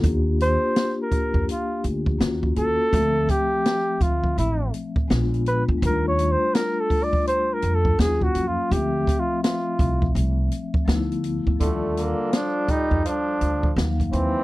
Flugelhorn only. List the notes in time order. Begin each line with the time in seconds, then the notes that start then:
0.42 C5
1.03 A#4
1.51 F4
2.58 A4
3.30 G4
4.02 F4
4.39 E4
5.48 B4
5.86 A#4
6.08 C#5
6.32 C5
6.54 A#4
6.80 A4
7.03 D5
7.27 C5
7.53 A#4
7.75 A4
8.01 G#4
8.23 F#4
8.47 F4
8.72 G4
9.20 F4
9.43 F4
11.61 A3
11.99 A#3
12.35 D4
12.71 D#4
13.08 D4
14.13 C4